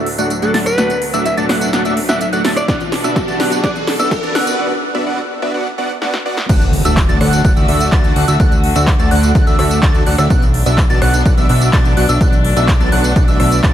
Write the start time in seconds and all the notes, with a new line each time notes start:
Already playing: D2 A2 F#3, riser
0.06 open hi-hat
0.18 A3 D4 F#4 D5 F#5 F#6, closed hi-hat, tambourine
0.30 closed hi-hat, tambourine
0.42 A3 D4 F#4 A4 D5 F#5 F#6, closed hi-hat, tambourine
0.54 A3 D4 F#4 D5 A5 A6, snare, open hi-hat
0.66 B4, cross-stick, closed hi-hat, tambourine
0.78 B2 A3 D4 F#4 D5 F#5 F#6, snare, closed hi-hat, tambourine
0.90 closed hi-hat, tambourine
1.02 open hi-hat
1.14 A3 D4 F#4 D5 E5 E6, closed hi-hat, tambourine
1.26 E5, closed hi-hat, tambourine
1.37 A3 D4 F#4 D5 A5 A6, closed hi-hat, tambourine
1.49 A3 D4 F#4 D5 F#5 F#6, cross-stick, snare, open hi-hat
1.61 closed hi-hat, tambourine
1.73 A3 D4 F#4 D5 F#5 F#6, snare, closed hi-hat, tambourine
1.85 A3 D4 F#4 D5 E5 E6, closed hi-hat, tambourine
1.97 open hi-hat
2.09 A3 D4 F#4 D5 E5 F#5 F#6, snare, tambourine
2.21 E5, closed hi-hat, tambourine
2.33 A3 D4 F#4 D5 F#5 F#6, closed hi-hat, tambourine
2.45 A3 D4 F#4 D5 A5 A6, snare, open hi-hat
2.56 D5, cross-stick, closed hi-hat, tambourine
2.68 B2 B3 D4 F#4 D5 F#5 F#6, kick, snare, closed hi-hat, tambourine
2.80 closed hi-hat, tambourine
2.92 snare, open hi-hat
3.04 B3 D4 F#4 D5 E5 E6, closed hi-hat, tambourine
3.16 kick, snare, closed hi-hat, tambourine
3.28 B3 D4 F#4 D5 A5 A6, closed hi-hat, tambourine
3.40 B3 D4 F#4 D5 F#5 F#6, snare, open hi-hat
3.52 closed hi-hat, tambourine
3.64 B3 D4 F#4 D5 F#5 F#6, kick, snare, closed hi-hat, tambourine
3.76 closed hi-hat, tambourine
3.87 snare, open hi-hat
3.99 B3 D4 F#4 D5 E5 E6, closed hi-hat, tambourine
4.11 kick, snare, closed hi-hat, tambourine
4.23 B3 D4 F#4 D5 A5 A6, closed hi-hat, tambourine
4.35 B3 D4 F#4 D5 F#5 F#6, snare, open hi-hat
4.47 closed hi-hat, tambourine
4.59 B3 D4 F#4 D5 F#5
4.95 B3 D4 F#4 D5 E5
5.06 B3 D4 F#4 D5 F#5
5.42 B3 D4 F#4 D5 E5
5.54 B3 D4 F#4 D5 F#5
5.78 B3 D4 F#4 D5 F#5
6.02 B3 D4 F#4 D5 F#5, snare
6.14 snare
6.26 B3 D4 F#4 D5 F#5
6.37 snare
6.49 D2 D3 A3 D4 F#4 D5 F#5 F#6, kick, closed hi-hat, crash, tambourine, impact
6.61 closed hi-hat, tambourine
6.73 open hi-hat
6.85 D2 A3 D4 F#4 D5 E5 E6, closed hi-hat, tambourine
6.97 kick, clap, closed hi-hat, tambourine
7.09 D2 A3 D4 F#4 D5 A5 A6, closed hi-hat, tambourine
7.21 D2 A3 D4 F#4 D5 F#5 F#6, cross-stick, open hi-hat
7.33 closed hi-hat, tambourine
7.45 D2 F#6, kick, closed hi-hat, tambourine
7.57 D2 A3 D4 F#4 D5 E5 E6, closed hi-hat, tambourine
7.68 D2 A3 D4 F#4 D5 E5 E6, open hi-hat
7.80 closed hi-hat, tambourine
7.92 D2 A3 D4 F#4 A5 A6, kick, clap, closed hi-hat, tambourine
8.04 closed hi-hat, tambourine
8.16 D2 A3 D4 F#4 D5 F#5 F#6, open hi-hat
8.28 D2 A3 D4 F#4 D5 E5 E6, closed hi-hat, tambourine
8.40 D2 A3 F#6, kick, closed hi-hat, tambourine
8.52 closed hi-hat, tambourine
8.64 open hi-hat
8.76 D2 A3 D4 F#4 D5 E5 E6, closed hi-hat, tambourine
8.87 kick, clap, closed hi-hat, tambourine
8.99 D2 A3 D4 F#4 D5 A5 A6, closed hi-hat, tambourine
9.11 D2 A3 D4 F#4 D5 F#5 F#6, open hi-hat
9.23 closed hi-hat, tambourine
9.35 D2 A3 D4 F#4 D5 F#5 F#6, kick, closed hi-hat, tambourine
9.47 D2 A3 D4 F#4 D5 E5 E6, closed hi-hat, tambourine
9.59 D2 A3 D4 F#4 D5 E5 E6, cross-stick, open hi-hat
9.71 closed hi-hat, tambourine
9.83 D2 A3 D4 D5 A5 A6, kick, clap, closed hi-hat, tambourine
9.95 closed hi-hat, tambourine
10.06 D2 A3 D4 F#4 D5 F#5 F#6, open hi-hat
10.18 D2 A3 D4 F#4 D5 E5 E6, cross-stick, closed hi-hat, tambourine
10.30 B1 F#3 B3 D4 F#4 D5 F#5 F#6, kick, closed hi-hat, tambourine
10.42 closed hi-hat, tambourine
10.54 open hi-hat
10.66 B1 B3 D4 F#4 D5 E5 E6, closed hi-hat, tambourine
10.78 kick, clap, closed hi-hat, tambourine
10.90 B1 B3 D4 F#4 D5 A5 A6, closed hi-hat, tambourine
11.02 B1 B3 D4 F#4 D5 F#5 F#6, cross-stick, open hi-hat
11.14 closed hi-hat, tambourine
11.26 B1 D4 F#4 D5 F#5 F#6, kick, closed hi-hat, tambourine
11.37 B1 B3 D4 F#4 D5 E5 E6, closed hi-hat, tambourine
11.49 B1 B3 D4 F#4 D5 E5 E6, open hi-hat
11.61 closed hi-hat, tambourine
11.73 B1 B3 D4 F#4 D5 A6, kick, clap, closed hi-hat, tambourine
11.85 closed hi-hat, tambourine
11.97 B1 B3 D4 F#4 D5 F#5 F#6, open hi-hat
12.09 B1 B3 D4 F#4 D5 E5 E6, closed hi-hat, tambourine
12.21 B1 A3 B3 D4 F#4 D5 F#5 F#6, kick, closed hi-hat, tambourine
12.33 closed hi-hat, tambourine
12.45 open hi-hat
12.56 B1 B3 D4 F#4 D5 E5 E6, closed hi-hat, tambourine
12.68 kick, clap, closed hi-hat, tambourine
12.80 B1 B3 D4 F#4 D5 A5 A6, closed hi-hat, tambourine
12.92 B1 B3 D4 F#4 D5 F#5 F#6, open hi-hat
13.04 closed hi-hat, tambourine
13.16 B1 B3 D4 F#4 D5 F#5 F#6, kick, closed hi-hat, tambourine
13.28 B1 B3 D4 F#4 D5 E5 E6, closed hi-hat, tambourine
13.40 B1 B3 D4 F#4 D5 E5 E6, cross-stick, open hi-hat
13.52 closed hi-hat, tambourine
13.64 B1 B3 D4 F#4 D5 A5 A6, kick, clap, closed hi-hat, tambourine